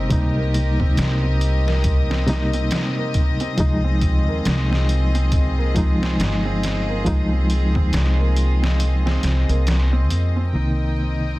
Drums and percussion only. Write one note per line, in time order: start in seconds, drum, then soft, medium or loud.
0.11 kick loud
0.11 closed hi-hat medium
0.54 closed hi-hat medium
0.80 kick medium
0.97 snare loud
0.97 closed hi-hat medium
1.41 closed hi-hat medium
1.68 snare medium
1.84 kick loud
1.84 closed hi-hat medium
2.11 snare soft
2.28 snare soft
2.28 closed hi-hat medium
2.53 closed hi-hat soft
2.71 snare loud
2.71 closed hi-hat medium
3.14 kick medium
3.14 closed hi-hat medium
3.40 closed hi-hat soft
3.58 kick loud
3.58 closed hi-hat medium
4.02 kick medium
4.02 closed hi-hat medium
4.45 snare loud
4.45 closed hi-hat medium
4.73 snare soft
4.89 closed hi-hat medium
5.15 closed hi-hat soft
5.32 kick loud
5.32 closed hi-hat medium
5.76 kick medium
5.76 closed hi-hat medium
6.03 snare soft
6.20 snare loud
6.20 closed hi-hat medium
6.63 snare medium
6.63 closed hi-hat medium
7.06 kick loud
7.06 closed hi-hat medium
7.50 closed hi-hat medium
7.75 kick medium
7.93 snare loud
7.93 closed hi-hat medium
8.36 closed hi-hat medium
8.64 snare medium
8.80 closed hi-hat medium
9.07 snare soft
9.23 snare soft
9.23 closed hi-hat medium
9.49 closed hi-hat soft
9.67 snare loud
9.67 closed hi-hat medium
10.10 closed hi-hat medium